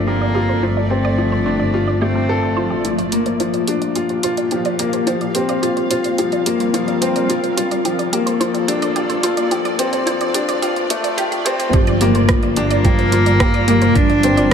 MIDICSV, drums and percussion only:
0, 0, Header, 1, 2, 480
1, 0, Start_track
1, 0, Key_signature, -2, "minor"
1, 0, Tempo, 555556
1, 541, Time_signature, 4, 2, 24, 8
1, 12561, End_track
2, 0, Start_track
2, 0, Title_t, "Drums"
2, 2459, Note_on_c, 9, 42, 36
2, 2546, Note_off_c, 9, 42, 0
2, 2579, Note_on_c, 9, 42, 18
2, 2666, Note_off_c, 9, 42, 0
2, 2697, Note_on_c, 9, 42, 60
2, 2783, Note_off_c, 9, 42, 0
2, 2816, Note_on_c, 9, 42, 26
2, 2902, Note_off_c, 9, 42, 0
2, 2937, Note_on_c, 9, 42, 36
2, 3023, Note_off_c, 9, 42, 0
2, 3056, Note_on_c, 9, 42, 18
2, 3142, Note_off_c, 9, 42, 0
2, 3175, Note_on_c, 9, 42, 61
2, 3262, Note_off_c, 9, 42, 0
2, 3298, Note_on_c, 9, 42, 27
2, 3384, Note_off_c, 9, 42, 0
2, 3417, Note_on_c, 9, 42, 39
2, 3503, Note_off_c, 9, 42, 0
2, 3536, Note_on_c, 9, 42, 17
2, 3622, Note_off_c, 9, 42, 0
2, 3657, Note_on_c, 9, 42, 66
2, 3743, Note_off_c, 9, 42, 0
2, 3779, Note_on_c, 9, 42, 28
2, 3865, Note_off_c, 9, 42, 0
2, 3897, Note_on_c, 9, 42, 35
2, 3983, Note_off_c, 9, 42, 0
2, 4017, Note_on_c, 9, 42, 18
2, 4104, Note_off_c, 9, 42, 0
2, 4139, Note_on_c, 9, 42, 62
2, 4226, Note_off_c, 9, 42, 0
2, 4260, Note_on_c, 9, 42, 28
2, 4346, Note_off_c, 9, 42, 0
2, 4380, Note_on_c, 9, 42, 39
2, 4467, Note_off_c, 9, 42, 0
2, 4501, Note_on_c, 9, 42, 19
2, 4588, Note_off_c, 9, 42, 0
2, 4620, Note_on_c, 9, 42, 65
2, 4706, Note_off_c, 9, 42, 0
2, 4742, Note_on_c, 9, 42, 30
2, 4828, Note_off_c, 9, 42, 0
2, 4864, Note_on_c, 9, 42, 40
2, 4950, Note_off_c, 9, 42, 0
2, 4984, Note_on_c, 9, 42, 20
2, 5071, Note_off_c, 9, 42, 0
2, 5103, Note_on_c, 9, 42, 65
2, 5189, Note_off_c, 9, 42, 0
2, 5222, Note_on_c, 9, 42, 29
2, 5308, Note_off_c, 9, 42, 0
2, 5342, Note_on_c, 9, 42, 41
2, 5429, Note_off_c, 9, 42, 0
2, 5462, Note_on_c, 9, 42, 20
2, 5548, Note_off_c, 9, 42, 0
2, 5583, Note_on_c, 9, 42, 72
2, 5669, Note_off_c, 9, 42, 0
2, 5704, Note_on_c, 9, 42, 32
2, 5791, Note_off_c, 9, 42, 0
2, 5824, Note_on_c, 9, 42, 42
2, 5910, Note_off_c, 9, 42, 0
2, 5944, Note_on_c, 9, 42, 20
2, 6030, Note_off_c, 9, 42, 0
2, 6063, Note_on_c, 9, 42, 64
2, 6150, Note_off_c, 9, 42, 0
2, 6184, Note_on_c, 9, 42, 29
2, 6271, Note_off_c, 9, 42, 0
2, 6304, Note_on_c, 9, 42, 42
2, 6390, Note_off_c, 9, 42, 0
2, 6425, Note_on_c, 9, 42, 19
2, 6512, Note_off_c, 9, 42, 0
2, 6545, Note_on_c, 9, 42, 74
2, 6631, Note_off_c, 9, 42, 0
2, 6665, Note_on_c, 9, 42, 31
2, 6751, Note_off_c, 9, 42, 0
2, 6783, Note_on_c, 9, 42, 45
2, 6869, Note_off_c, 9, 42, 0
2, 6905, Note_on_c, 9, 42, 20
2, 6991, Note_off_c, 9, 42, 0
2, 7024, Note_on_c, 9, 42, 74
2, 7110, Note_off_c, 9, 42, 0
2, 7144, Note_on_c, 9, 42, 33
2, 7230, Note_off_c, 9, 42, 0
2, 7264, Note_on_c, 9, 42, 45
2, 7350, Note_off_c, 9, 42, 0
2, 7383, Note_on_c, 9, 42, 20
2, 7470, Note_off_c, 9, 42, 0
2, 7503, Note_on_c, 9, 42, 73
2, 7589, Note_off_c, 9, 42, 0
2, 7622, Note_on_c, 9, 42, 30
2, 7709, Note_off_c, 9, 42, 0
2, 7740, Note_on_c, 9, 42, 41
2, 7827, Note_off_c, 9, 42, 0
2, 7859, Note_on_c, 9, 42, 23
2, 7946, Note_off_c, 9, 42, 0
2, 7978, Note_on_c, 9, 42, 76
2, 8064, Note_off_c, 9, 42, 0
2, 8097, Note_on_c, 9, 42, 32
2, 8184, Note_off_c, 9, 42, 0
2, 8219, Note_on_c, 9, 42, 40
2, 8306, Note_off_c, 9, 42, 0
2, 8339, Note_on_c, 9, 42, 21
2, 8426, Note_off_c, 9, 42, 0
2, 8458, Note_on_c, 9, 42, 71
2, 8545, Note_off_c, 9, 42, 0
2, 8578, Note_on_c, 9, 42, 32
2, 8665, Note_off_c, 9, 42, 0
2, 8699, Note_on_c, 9, 42, 43
2, 8785, Note_off_c, 9, 42, 0
2, 8819, Note_on_c, 9, 42, 22
2, 8906, Note_off_c, 9, 42, 0
2, 8937, Note_on_c, 9, 42, 73
2, 9024, Note_off_c, 9, 42, 0
2, 9060, Note_on_c, 9, 42, 30
2, 9147, Note_off_c, 9, 42, 0
2, 9180, Note_on_c, 9, 42, 44
2, 9266, Note_off_c, 9, 42, 0
2, 9300, Note_on_c, 9, 42, 21
2, 9386, Note_off_c, 9, 42, 0
2, 9419, Note_on_c, 9, 42, 76
2, 9506, Note_off_c, 9, 42, 0
2, 9539, Note_on_c, 9, 42, 33
2, 9626, Note_off_c, 9, 42, 0
2, 9659, Note_on_c, 9, 42, 46
2, 9745, Note_off_c, 9, 42, 0
2, 9781, Note_on_c, 9, 42, 22
2, 9867, Note_off_c, 9, 42, 0
2, 9899, Note_on_c, 9, 42, 75
2, 9985, Note_off_c, 9, 42, 0
2, 10019, Note_on_c, 9, 42, 34
2, 10106, Note_off_c, 9, 42, 0
2, 10137, Note_on_c, 9, 42, 38
2, 10140, Note_on_c, 9, 36, 102
2, 10223, Note_off_c, 9, 42, 0
2, 10226, Note_off_c, 9, 36, 0
2, 10257, Note_on_c, 9, 42, 20
2, 10343, Note_off_c, 9, 42, 0
2, 10375, Note_on_c, 9, 42, 70
2, 10375, Note_on_c, 9, 45, 65
2, 10461, Note_off_c, 9, 42, 0
2, 10461, Note_off_c, 9, 45, 0
2, 10496, Note_on_c, 9, 42, 30
2, 10583, Note_off_c, 9, 42, 0
2, 10615, Note_on_c, 9, 37, 94
2, 10615, Note_on_c, 9, 42, 42
2, 10620, Note_on_c, 9, 36, 104
2, 10702, Note_off_c, 9, 37, 0
2, 10702, Note_off_c, 9, 42, 0
2, 10706, Note_off_c, 9, 36, 0
2, 10736, Note_on_c, 9, 42, 21
2, 10822, Note_off_c, 9, 42, 0
2, 10856, Note_on_c, 9, 42, 69
2, 10942, Note_off_c, 9, 42, 0
2, 10977, Note_on_c, 9, 42, 31
2, 11064, Note_off_c, 9, 42, 0
2, 11099, Note_on_c, 9, 36, 104
2, 11099, Note_on_c, 9, 42, 43
2, 11099, Note_on_c, 9, 45, 72
2, 11185, Note_off_c, 9, 42, 0
2, 11185, Note_off_c, 9, 45, 0
2, 11186, Note_off_c, 9, 36, 0
2, 11221, Note_on_c, 9, 42, 20
2, 11307, Note_off_c, 9, 42, 0
2, 11338, Note_on_c, 9, 42, 71
2, 11424, Note_off_c, 9, 42, 0
2, 11459, Note_on_c, 9, 42, 33
2, 11545, Note_off_c, 9, 42, 0
2, 11579, Note_on_c, 9, 36, 103
2, 11579, Note_on_c, 9, 37, 100
2, 11579, Note_on_c, 9, 42, 40
2, 11665, Note_off_c, 9, 37, 0
2, 11665, Note_off_c, 9, 42, 0
2, 11666, Note_off_c, 9, 36, 0
2, 11698, Note_on_c, 9, 42, 21
2, 11785, Note_off_c, 9, 42, 0
2, 11818, Note_on_c, 9, 42, 72
2, 11818, Note_on_c, 9, 45, 70
2, 11905, Note_off_c, 9, 42, 0
2, 11905, Note_off_c, 9, 45, 0
2, 11937, Note_on_c, 9, 42, 29
2, 12024, Note_off_c, 9, 42, 0
2, 12057, Note_on_c, 9, 42, 43
2, 12060, Note_on_c, 9, 36, 107
2, 12143, Note_off_c, 9, 42, 0
2, 12146, Note_off_c, 9, 36, 0
2, 12179, Note_on_c, 9, 42, 20
2, 12266, Note_off_c, 9, 42, 0
2, 12298, Note_on_c, 9, 42, 73
2, 12384, Note_off_c, 9, 42, 0
2, 12420, Note_on_c, 9, 42, 30
2, 12506, Note_off_c, 9, 42, 0
2, 12561, End_track
0, 0, End_of_file